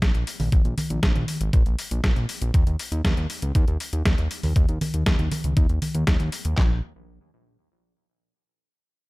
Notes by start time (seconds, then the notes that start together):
0.02 A#1, kick, snare, closed hi-hat
0.15 A#1, closed hi-hat
0.27 open hi-hat
0.40 A#1, open hi-hat, high conga
0.52 A#1, kick, closed hi-hat
0.65 A#1, closed hi-hat
0.78 open hi-hat, high conga
0.90 A#1, closed hi-hat
1.03 A#1, kick, snare, closed hi-hat
1.15 A#1, closed hi-hat, high conga
1.28 open hi-hat
1.41 G#1, closed hi-hat
1.53 A#1, kick, closed hi-hat
1.66 A#1, closed hi-hat
1.79 open hi-hat
1.91 A#1, closed hi-hat
2.04 A#1, kick, snare, closed hi-hat
2.16 A#1, closed hi-hat
2.29 open hi-hat
2.42 A#1, closed hi-hat
2.54 D#2, kick, closed hi-hat
2.67 D#2, closed hi-hat
2.79 open hi-hat
2.92 D#2, closed hi-hat
3.05 D#2, kick, snare, closed hi-hat
3.17 D#2, closed hi-hat
3.30 open hi-hat
3.42 C#2, closed hi-hat
3.55 D#2, kick, closed hi-hat
3.68 D#2, closed hi-hat
3.80 open hi-hat
3.93 D#2, closed hi-hat
4.05 D#2, kick, snare, closed hi-hat
4.18 D#2, closed hi-hat
4.31 open hi-hat
4.43 D#2, open hi-hat, high conga
4.56 D#2, kick, closed hi-hat
4.69 D#2, closed hi-hat
4.81 open hi-hat, high conga
4.94 D#2, closed hi-hat
5.06 D#2, kick, snare, closed hi-hat
5.19 D#2, closed hi-hat, high conga
5.32 open hi-hat, high conga
5.44 C#2, closed hi-hat
5.57 D#2, kick, closed hi-hat
5.69 D#2, closed hi-hat
5.82 open hi-hat, high conga
5.95 D#2, closed hi-hat
6.07 D#2, kick, snare, closed hi-hat
6.20 D#2, closed hi-hat
6.32 open hi-hat
6.45 D#2, closed hi-hat
6.58 A#1, kick, snare, clap